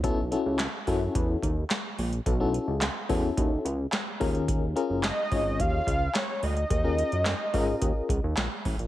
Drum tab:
HH |x-x-x-o-x-x-x-ox|x-x-x-o-x-x-x-ox|x-x-x-o-x-x-x-ox|x-xxx-o-x-x-x-ox|
CP |----x-------x---|----x-------x---|----x-------x---|----x-------x---|
SD |----o-------o---|----o-------o---|----o-------o---|----o-------o---|
BD |o-----o-o-o-----|o-----o-o-----o-|o-----o-o-o-----|o-----o-o-o---o-|